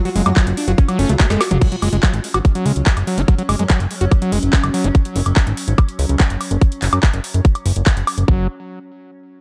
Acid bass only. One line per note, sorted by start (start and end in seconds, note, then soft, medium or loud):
0.05 0.09 F#3 loud
0.16 0.22 G#3 medium
0.26 0.30 G#3 loud
0.37 0.46 F#3 medium
0.68 0.72 F#4 medium
0.89 0.98 F#3 loud
0.99 1.09 C#4 medium
1.09 1.13 A3 medium
1.20 1.26 A3 medium
1.30 1.40 G#3 loud
1.51 1.58 F#3 medium
1.61 1.68 F#3 medium
1.72 1.76 F#3 loud
1.82 1.89 G#3 medium
1.93 1.97 G#3 loud
2.03 2.13 F#3 medium
2.34 2.38 F#4 medium
2.55 2.65 F#3 loud
2.66 2.72 G#3 medium
3.07 3.19 F#3 medium
3.18 3.22 F#4 medium
3.28 3.35 F#3 medium
3.39 3.43 F#3 loud
3.49 3.56 G#3 medium
3.59 3.63 G#3 loud
3.70 3.80 F#3 medium
4.01 4.05 F#4 medium
4.22 4.32 F#3 loud
4.32 4.39 G#3 medium
4.74 4.86 F#3 medium
4.84 4.88 F#4 medium
8.28 8.47 F#3 loud